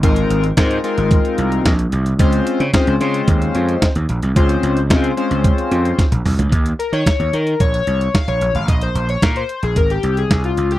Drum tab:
HH |xxxxxxxxxxxxxxxx|xxxxxxxxxxxxxxxx|xxxxxxxxxxxxxxox|xxxxxxxxxxxxxxxx|
SD |----o-------o---|----o-------o---|----o-------o---|----o-------o---|
T1 |----------------|----------------|-------------o--|----------------|
T2 |----------------|----------------|--------------o-|----------------|
FT |----------------|----------------|---------------o|----------------|
BD |o---o---o---o---|o---o---o---o---|o---o---o---o---|o---o---o---o---|

HH |xxxxxxxxxxxxxxxx|
SD |----o-------o---|
T1 |----------------|
T2 |----------------|
FT |----------------|
BD |o---o---o---o---|